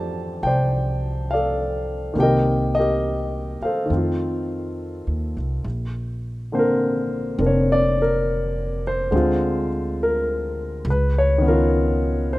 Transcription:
Already playing: F2 F3 A3 D4 G4 C5 D5 G5 A5
0.43 C2 C5 G5
0.47 D5
1.31 D5 F5
1.35 A4
2.14 C2 D#3 A#3 C4
2.19 G4 A#4 G5
2.23 D#5
2.75 D#5
2.79 G4 A#4
3.61 F5, muted upright bass stroke
3.65 A4 C5
3.86 D#3 A3
3.90 F2 C4
3.97 F4
5.07 D#2
5.37 C2
5.64 A#1
6.52 D3 A#3 C4 C5
6.59 A#4
7.38 F1 C4 D4 A#4
7.46 C#5
7.72 D5
8.02 A#4
8.87 C5
9.11 D2 D3 G#3 C4
9.16 F4
10.03 A#4
10.85 C#2
10.90 B4
11.18 C#5
11.38 D#3 B3
11.46 C#4 F4 A#4
12.33 C5

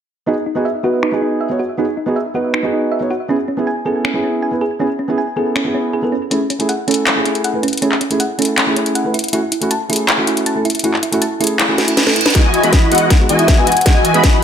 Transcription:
0.26 B3 D#4 F#4 G#4
0.46 D#4
0.55 B3 D#4 F#4 G#4
0.65 E5
0.83 B3 D#4 F#4 B4
1.03 D#4, finger snap
1.12 B3 D#4 F#4 G#4
1.22 D#4
1.41 E5
1.49 B3 D#4 F#4 C#5
1.59 F#4
1.77 B3 D#4 F#4 G#4
1.97 D#4
2.06 B3 D#4 F#4 G#4
2.16 E5
2.34 B3 D#4 F#4 B4
2.54 D#4, finger snap
2.63 B3 D#4 F#4 G#4
2.73 D#4
2.92 E5
3.00 B3 D#4 F#4 C#5
3.10 F#4
3.28 B3 C#4 E4 G#4
3.48 C#4
3.57 B3 C#4 E4 G#4
3.67 G#5
3.85 B3 C#4 E4 G#4 A4
4.05 C#4, finger snap
4.13 B3 C#4 E4 G#4
4.24 C#4
4.42 G#5
4.51 B3 C#4 E4 B4
4.61 G#4
4.79 B3 C#4 E4 G#4
4.99 C#4
5.08 B3 C#4 E4 G#4
5.18 G#5
5.36 B3 C#4 E4 G#4 A4
5.56 C#4, finger snap
5.64 B3 C#4 E4 G#4
5.75 C#4
5.93 G#4
6.02 B3 C#4 E4 A4 B4
6.12 C#4
6.30 A3 C#4 E4 G#4, closed hi-hat
6.50 C#4, closed hi-hat
6.59 A3 C#4 E4 G#4, closed hi-hat
6.69 F#5, closed hi-hat
6.87 A3 C#4 E4 A4, closed hi-hat
6.91 closed hi-hat
6.94 closed hi-hat
7.07 C#4, finger snap, clap, closed hi-hat
7.15 A3 C#4 E4 G#4
7.25 C#4, closed hi-hat
7.35 closed hi-hat
7.44 F#5, closed hi-hat
7.53 A3 C#4 E4 B4
7.63 C#4, closed hi-hat
7.68 closed hi-hat
7.73 closed hi-hat
7.77 A3, closed hi-hat
7.82 C#4 E4 G#4, closed hi-hat
7.92 clap
8.01 C#4, closed hi-hat
8.10 A3 C#4 E4 G#4, closed hi-hat
8.20 F#5, closed hi-hat
8.38 A3 C#4 E4 A4, closed hi-hat
8.42 closed hi-hat
8.45 closed hi-hat
8.58 C#4, finger snap, clap, closed hi-hat
8.66 A3 C#4 E4 G#4
8.76 C#4, closed hi-hat
8.86 closed hi-hat
8.95 F#5, closed hi-hat
9.04 A3 C#4 E4 B4
9.14 E4, closed hi-hat
9.19 closed hi-hat
9.24 closed hi-hat
9.28 A3, closed hi-hat
9.33 C#4 E4 F#4, closed hi-hat
9.52 E4, closed hi-hat
9.61 A3 C#4 E4 F#4, closed hi-hat
9.71 A5, closed hi-hat
9.89 A3 C#4 E4 G#4, closed hi-hat
9.93 closed hi-hat
9.96 closed hi-hat
10.08 E4, finger snap, clap, closed hi-hat
10.17 A3 C#4 E4 F#4
10.27 E4, closed hi-hat
10.37 closed hi-hat
10.46 A5, closed hi-hat
10.55 A3 C#4 E4 A4
10.65 E4, closed hi-hat
10.70 closed hi-hat
10.75 closed hi-hat
10.79 A3, closed hi-hat
10.84 C#4 E4 F#4, closed hi-hat
10.94 clap
11.03 E4, closed hi-hat
11.11 A3 C#4 E4 F#4, closed hi-hat
11.22 A5, closed hi-hat
11.39 A3 C#4 E4 G#4, closed hi-hat
11.44 closed hi-hat
11.47 closed hi-hat
11.59 E4, finger snap, clap, closed hi-hat, reverse cymbal
11.68 A3 C#4 E4 F#4
11.78 F#4, snare, closed hi-hat
11.88 E4, closed hi-hat
11.97 B4, snare, closed hi-hat
12.06 A3 C#4 E4 A4, snare
12.16 E4, closed hi-hat
12.21 closed hi-hat
12.26 B4, snare, closed hi-hat
12.30 G#3, closed hi-hat
12.35 E3 B3 D#4 E4 F#4 D#5 G#5, kick, snare, closed hi-hat
12.54 closed hi-hat
12.62 E3 G#3 B3 D#4 E4 F#4 D#5 B5, closed hi-hat
12.73 kick, snare, closed hi-hat
12.90 E3 G#3 B3 D#4 E4 F#4 G#4 D#5 F#5, closed hi-hat
12.95 closed hi-hat
12.98 closed hi-hat
13.10 kick, snare, closed hi-hat
13.19 G#3 B3 D#4 F#4
13.29 E3 E4 F#4 D#5 G#5, closed hi-hat
13.39 E5, closed hi-hat
13.48 kick, snare, closed hi-hat
13.57 E3 G#3 B3 D#4 E4 F#4 B4 D#5 G#5
13.67 F#5, closed hi-hat
13.72 closed hi-hat
13.77 F#5, closed hi-hat
13.81 G#3, closed hi-hat
13.85 E3 B3 D#4 E4 F#4 D#5 G#5, kick, snare, closed hi-hat
14.05 G#5, closed hi-hat
14.13 E3 G#3 B3 D#4 E4 F#4 D#5 B5, closed hi-hat
14.24 kick, snare, closed hi-hat

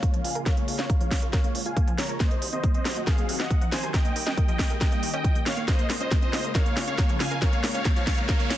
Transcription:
Already playing: C#3 G#3 A#3 F4 C#5 F5
0.03 A#3, kick, closed hi-hat
0.14 F3, closed hi-hat
0.24 A#1 F5 G#5, open hi-hat
0.35 A#1 A#4, closed hi-hat
0.46 A#4 C#5 F5, kick, snare, closed hi-hat
0.57 A#3, closed hi-hat
0.68 A#1, open hi-hat
0.79 A#1 C#4 C#5 F5, snare, closed hi-hat
0.90 A#3, kick, closed hi-hat
1.01 F3 C#5 F5, closed hi-hat
1.11 A#1, kick, snare, open hi-hat
1.22 G#1 A#4, closed hi-hat
1.33 A#4 C#5 F5, kick, snare, closed hi-hat
1.44 A#3, closed hi-hat
1.55 A#1, open hi-hat
1.66 A#1 F4 F5 G#5, closed hi-hat
1.77 A#3, kick, closed hi-hat
1.88 F3, closed hi-hat
1.98 A#1 C#5 A#5, snare, open hi-hat
2.09 A#1 A#4, closed hi-hat
2.20 D#3 F#3 A#3 C4 F#4 C5 D#5, kick, snare, closed hi-hat
2.31 A#3, closed hi-hat
2.42 C2, open hi-hat
2.53 C2 C4 C5 D#5, closed hi-hat
2.64 A#3, kick, closed hi-hat
2.74 C4 C5 D#5, closed hi-hat
2.85 C2, cross-stick, snare, open hi-hat
2.96 A#1 A#3, closed hi-hat
3.07 G#4 A#4 F5, kick, snare, closed hi-hat
3.18 A#3, closed hi-hat
3.29 C2, open hi-hat
3.40 C2 C4 D#5 F#5, snare
3.51 A#3, kick, closed hi-hat
3.61 F3, closed hi-hat
3.72 C2 C5 G#5, snare, open hi-hat
3.83 C2 A#4, closed hi-hat
3.94 G3 A#3 G4 A#4 D#5 G5, kick, snare, closed hi-hat
4.05 A#3, closed hi-hat
4.16 D#2, open hi-hat
4.27 D#2 C#4 D#5 G5, snare
4.37 A#3, kick, closed hi-hat
4.48 F3 D#5 G5, closed hi-hat
4.59 D#2, kick, cross-stick, snare, open hi-hat
4.70 C#2 A#4, closed hi-hat
4.81 A#4 D#5 G5, kick, snare, closed hi-hat
4.92 A#3, closed hi-hat
5.03 D#2, open hi-hat
5.14 D#2 C#4 D#5 G5, closed hi-hat
5.24 F3, kick, closed hi-hat
5.35 A#2, closed hi-hat
5.46 D#2 C#5 F5, snare, open hi-hat
5.57 D#2 A#3, closed hi-hat
5.68 C#3 G#3 A#3 F4 C5 D#5, kick, snare, closed hi-hat, riser
5.79 A#3, closed hi-hat
5.90 A#1, snare, open hi-hat
6.01 A#1 C#4 C5 D#5, closed hi-hat
6.11 A#3, kick, snare, closed hi-hat
6.22 C4 C5 D#5, closed hi-hat
6.33 A#1, snare, open hi-hat
6.44 G#1 A#3, closed hi-hat
6.55 A#4 C#5 F5, kick, snare, closed hi-hat
6.66 A#3, closed hi-hat
6.77 A#1, snare, open hi-hat
6.87 A#1 C#4 C#5 F5, closed hi-hat
6.98 A#3, kick, snare, closed hi-hat
7.09 F3, closed hi-hat
7.20 A#1 F5 G#5, snare, open hi-hat
7.31 A#1 A#4, closed hi-hat
7.42 A#4 C#5 F5, kick, snare, closed hi-hat
7.53 A#3, closed hi-hat
7.64 A#1, snare, open hi-hat
7.74 A#1 C#4 C#5 F5, closed hi-hat
7.85 A#3, kick, snare, closed hi-hat
7.96 F3 C#5 F5, closed hi-hat
8.07 A#1, kick, snare, open hi-hat
8.18 G#1 A#4, closed hi-hat
8.29 A#4 C#5 F5, kick, snare, closed hi-hat
8.40 A#3, closed hi-hat
8.51 A#1, snare, open hi-hat

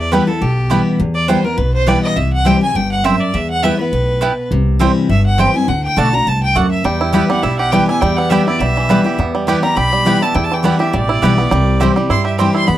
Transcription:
Already playing: E2
0.00 D5
0.12 E3 G3 B3 E4 B4 G5
0.27 B3 E4 A4
0.41 B1 B2 G4
0.70 E3 G3 B3 E4 B4 G5
1.00 E2
1.14 D5
1.28 E3 G3 B3 E4 B4 C5 G5
1.44 B3 E4 A#4
1.57 B1 B2 B4
1.74 C5
1.86 E3 G3 B3 E4 B4 D5 G5
2.03 D#5
2.16 C2 C3 E5
2.33 F#5
2.45 E3 G3 C4 E4 C5 G5
2.61 C4 E4 G#5
2.75 G1 G2 G5
2.92 F#5
3.04 F#2 C4 E4 C5 E5 G5
3.20 D5
3.34 E2 E5
3.50 F#5
3.63 E3 G3 B3 E4 B4 E5 G5
3.79 B3 E4 B4
3.92 B1 A2
4.21 B2 B3 E4 B4 G5
4.51 C2 C3
4.79 E3 G3 C4 E4 C5 G5
5.09 G1 G2 E5
5.26 F#5
5.38 E3 G3 C4 E4 C5 G5
5.54 C4 E4 G#5
5.68 D2 D3 F#5
5.84 G5
5.96 B1 D3 A3 D4 F#4 D5 F#5 A5
6.13 D4 F#4 A#5
6.26 C2 G2 A5
6.43 G5
6.55 D2 F#2 A3 F#4 D5 F#5
6.71 E5
6.84 E2 G3 G5
7.01 E4
7.13 E3 G3 B3 E4 G4 B4 G5
7.29 G3 B3 E4 F#5
7.43 B1 B2 E4 E5
7.58 G4 F#5
7.71 E3 G3 B3 E4 B4 G5
7.87 B3 E4 G#5
8.01 E2 G3 G5
8.16 B3 F#5
8.30 E3 G3 B3 E4 G4 B4 E5 G5
8.47 B3 E4 D5
8.59 B1 B2 G3 E5
8.77 E3
8.89 E3 G3 B3 E4 B4 G5
9.04 B3 E4 G4
9.18 E2 B3
9.35 G3
9.47 E3 G3 B3 E4 G4 B4 G5
9.63 G3 B3 E4 A#5
9.76 B1 B2 G4 B5
9.93 G3
10.05 E3 G3 B3 E4 G4 B4 G5
10.21 B3 E4 A5
10.34 E2 E4 G5
10.44 A5
10.52 E3 G5
10.63 E3 G3 B3 E4 B4 F#5 G5
10.79 B3 E4 G4 E5
10.93 A1 B2 G3 D5
11.09 E4
11.22 B1 E3 G3 B3 E4 G4 B4 G5
11.38 B3 E4
11.51 C2 C3 G3
11.80 E3 G3 C4 E4 G4 C5 G5
11.96 G3 C4 E4
12.10 G2 E4 C6
12.25 G4 E5
12.38 E3 G3 C4 E4 C5 G5
12.54 E4 C6
12.66 E2 B3 B5

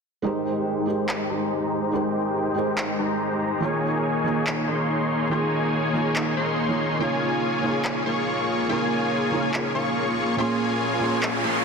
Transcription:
0.22 G#3 D#4 G4 A#4 C5 G5
0.26 C5
0.86 G#3 D#4 G4 A#4
0.90 C5
1.09 clap
1.30 G#3 D#4 G4 C5 A#5
1.91 G#3 D#4 G4 A#4 C5 G5
2.54 G#3 D#4 G4 A#4 C5
2.78 clap
2.99 G#3 D#4 G4 C5 A#5
3.60 D#3 A#3 D#4 F4 G#4 C#5 G#5
4.24 D#3 A#3 F4 G#4 C#5
4.47 clap
4.68 A#3 D#4 G#4 C#5 C6
5.29 D#3 A#3 D#4 F4 G#4 C#5 G#5 C6
5.93 D#3 A#3 F4 G#4 C#5
6.16 clap
6.37 A#3 D#4 G#4 C#5 C6
6.68 D#3 A#3 F4 G#4 C#5
6.98 C#3 A#3 D#4 F4 G#4 C#5 G#5
7.62 C#3 A#3 D#4 F4
7.66 C#5
7.85 clap
8.06 A#3 F4 G#4 C#5 C#6
8.67 C#3 A#3 D#4 F4 G#4 A#4 C#5 G#5
9.31 C#3 A#3 D#4 F4
9.35 C#5
9.54 clap
9.75 A#3 F4 G#4 C#5 C#6
10.37 A#2 A#3 C#4 F4 G#4 C#5 G#5, riser
10.41 C6
11.00 A#2 A#3 C#4 G#4
11.04 C6
11.23 clap
11.44 A#3 F4 G#4 C#5 C6

